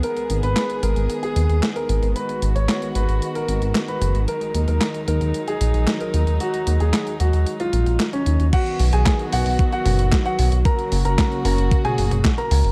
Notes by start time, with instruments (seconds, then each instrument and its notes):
Already playing: string section B3
0.03 string section D#3 G#3 G#4, grand piano A#4, closed hi-hat
0.17 closed hi-hat
0.30 analog synth bass G#1, closed hi-hat
0.43 analog synth bass G#1, grand piano B4, closed hi-hat
0.56 snare, clap, closed hi-hat
0.70 closed hi-hat
0.83 analog synth bass G#1, grand piano A#4, closed hi-hat
0.96 analog synth bass G#1, closed hi-hat
1.10 closed hi-hat
1.23 grand piano G#4, closed hi-hat
1.36 analog synth bass D#2, closed hi-hat
1.49 analog synth bass D#2, closed hi-hat
1.63 snare, clap, closed hi-hat
1.76 grand piano A#4, closed hi-hat
1.89 analog synth bass G#1, closed hi-hat
2.03 analog synth bass G#1, closed hi-hat
2.16 string section F#4, grand piano B4, closed hi-hat
2.29 closed hi-hat
2.42 analog synth bass G#1, closed hi-hat
2.56 analog synth bass G#1, grand piano C#5, closed hi-hat
2.69 snare, clap, closed hi-hat
2.82 closed hi-hat
2.95 analog synth bass G#1, grand piano B4, closed hi-hat
3.09 analog synth bass G#1, closed hi-hat
3.22 closed hi-hat
3.35 grand piano A#4, closed hi-hat
3.48 analog synth bass G#1, closed hi-hat
3.62 analog synth bass G#1, closed hi-hat
3.75 snare, clap, closed hi-hat
3.88 grand piano B4, closed hi-hat
4.02 analog synth bass F#1, closed hi-hat
4.15 analog synth bass G#1, closed hi-hat
4.28 string section F#3 D#4, grand piano A#4, closed hi-hat
4.41 closed hi-hat
4.55 analog synth bass D#2, closed hi-hat
4.68 analog synth bass D#2, grand piano A#4, closed hi-hat
4.81 snare, clap, closed hi-hat
4.94 closed hi-hat
5.08 analog synth bass D#2, grand piano A#4, closed hi-hat
5.21 analog synth bass D#2, closed hi-hat
5.34 closed hi-hat
5.48 grand piano G#4, closed hi-hat
5.61 analog synth bass A#1, closed hi-hat
5.74 analog synth bass A#1, closed hi-hat
5.87 snare, clap, closed hi-hat
6.00 grand piano A#4, closed hi-hat
6.14 analog synth bass D#2, closed hi-hat
6.27 analog synth bass D#2, closed hi-hat
6.40 grand piano F#4, closed hi-hat
6.54 closed hi-hat
6.67 analog synth bass D#2, closed hi-hat
6.80 analog synth bass D#2, grand piano G#4, closed hi-hat
6.93 snare, clap, closed hi-hat
7.07 closed hi-hat
7.20 analog synth bass D#2, grand piano F#4, closed hi-hat
7.33 analog synth bass D#2, closed hi-hat
7.46 closed hi-hat
7.60 grand piano F4, closed hi-hat
7.73 analog synth bass A#1, closed hi-hat
7.86 analog synth bass A#1, closed hi-hat
8.00 snare, clap, closed hi-hat
8.13 grand piano C#4, closed hi-hat
8.26 analog synth bass D#2, closed hi-hat
8.40 analog synth bass D#2, closed hi-hat
8.53 string section D#3 F#3 B3 F#4, grand piano F#4 F#5, kick, closed hi-hat, crash
8.66 closed hi-hat
8.79 analog synth bass B1, open hi-hat
8.93 analog synth bass B1, grand piano G#4 G#5, closed hi-hat
9.06 kick, snare, clap, closed hi-hat
9.19 closed hi-hat
9.33 analog synth bass B1, grand piano F#4 F#5, open hi-hat
9.46 analog synth bass B1, open hi-hat
9.59 kick, closed hi-hat
9.72 grand piano F#4 F#5, closed hi-hat
9.86 analog synth bass F#1, open hi-hat, high tom
9.99 analog synth bass F#1, closed hi-hat
10.12 kick, snare, clap, closed hi-hat
10.25 grand piano F#4 F#5, closed hi-hat
10.39 analog synth bass B1, open hi-hat
10.52 analog synth bass B1, closed hi-hat
10.65 string section C#3 A#3 F#4, grand piano A#4 A#5, kick, closed hi-hat
10.79 closed hi-hat
10.92 analog synth bass F#1, open hi-hat
11.05 analog synth bass F#1, grand piano A#4 A#5, closed hi-hat
11.18 kick, snare, clap, closed hi-hat
11.32 closed hi-hat
11.45 analog synth bass F#1, grand piano A#4 A#5, open hi-hat
11.58 analog synth bass F#1, closed hi-hat
11.71 kick, closed hi-hat
11.85 grand piano G#4 G#5, closed hi-hat, high tom
11.98 analog synth bass F#1, open hi-hat
12.11 analog synth bass F#1, closed hi-hat, high tom
12.25 kick, snare, clap, closed hi-hat
12.38 grand piano A#4 A#5, closed hi-hat
12.51 analog synth bass C#2, open hi-hat
12.64 analog synth bass F#1, open hi-hat